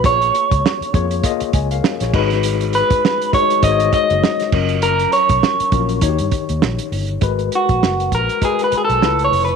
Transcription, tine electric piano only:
0.04 0.69 A#3 medium
0.04 0.70 F4 medium
0.04 0.70 G#4 medium
0.04 0.13 B4 medium
0.13 0.74 C#5 medium
0.93 1.16 A#3 medium
0.93 1.17 F4 medium
0.93 1.17 G#4 medium
0.93 1.17 C#5 medium
1.24 2.10 A#3 medium
1.24 2.11 F4 medium
1.24 1.54 G#4 medium
1.24 1.53 D#5 loud
1.54 1.71 D#5 medium
1.54 1.70 G#5 medium
1.72 2.00 A#4 medium
1.72 2.00 F5 medium
2.02 2.30 G#4 medium
2.02 2.30 C#5 medium
2.13 3.10 G#3 medium
2.13 3.10 D#4 medium
2.13 3.11 F#4 medium
2.13 3.11 B4 medium
3.33 3.56 G#3 medium
3.33 3.56 D#4 medium
3.33 3.56 F#4 medium
3.33 3.57 C#5 medium
3.63 4.49 G#3 medium
3.63 4.50 D#4 medium
3.63 4.50 F#4 medium
3.63 3.71 C5 medium
3.71 4.54 C#5 medium
4.53 5.49 F#3 medium
4.53 5.50 C#4 medium
4.53 5.50 F4 medium
4.53 5.50 A#4 medium
5.72 5.95 F#3 medium
5.72 5.96 C#4 medium
5.72 5.96 F4 medium
5.72 5.96 A#4 medium
6.01 6.88 D#3 medium
6.01 6.89 D#4 medium
6.01 6.10 F#4 medium
6.01 6.89 C#5 medium
6.09 6.92 G4 medium
7.21 8.08 G#3 medium
7.21 8.08 F#4 medium
7.21 8.09 A#4 medium
7.21 8.09 B4 medium
8.41 9.01 G#3 medium
8.41 9.02 F#4 medium
8.41 9.02 A#4 medium
8.41 9.02 B4 medium
9.01 9.51 C#3 medium
9.01 9.51 A3 medium
9.01 9.51 E4 medium
9.01 9.52 F4 medium
9.01 9.52 B4 medium

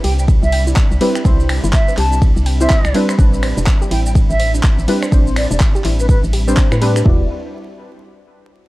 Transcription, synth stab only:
0.00 0.98 G3 medium
0.00 0.98 C4 medium
0.00 0.99 E4 medium
0.00 0.99 B4 medium
1.00 1.17 G3 medium
1.00 1.17 C4 medium
1.00 1.17 E4 medium
1.00 1.17 B4 loud
1.24 2.57 G3 medium
1.24 2.57 C4 medium
1.24 2.57 E4 medium
1.24 2.58 C5 medium
2.60 2.73 G3 medium
2.60 2.73 C4 medium
2.60 2.73 E4 medium
2.60 2.73 C5 medium
2.94 3.15 G3 loud
2.94 3.16 C4 medium
2.94 3.16 D4 medium
2.94 3.16 B4 loud
3.18 4.85 G3 medium
3.18 4.86 C4 medium
3.18 4.86 D4 medium
3.18 4.86 B4 medium
4.87 5.04 G3 medium
4.87 5.04 C4 medium
4.87 5.04 D4 medium
4.87 5.04 B4 loud
5.11 6.44 G3 medium
5.11 6.44 C4 medium
5.11 6.44 D4 medium
5.11 6.45 C5 medium
6.47 6.70 G3 medium
6.47 6.70 C4 medium
6.47 6.70 D4 medium
6.47 6.70 C5 loud
6.81 6.97 G3 medium
6.81 6.98 C4 medium
6.81 6.98 D4 medium
6.81 6.98 B4 loud
7.04 7.24 G3 medium
7.04 7.24 E4 medium
7.04 7.25 F#4 medium
7.04 7.25 D5 medium

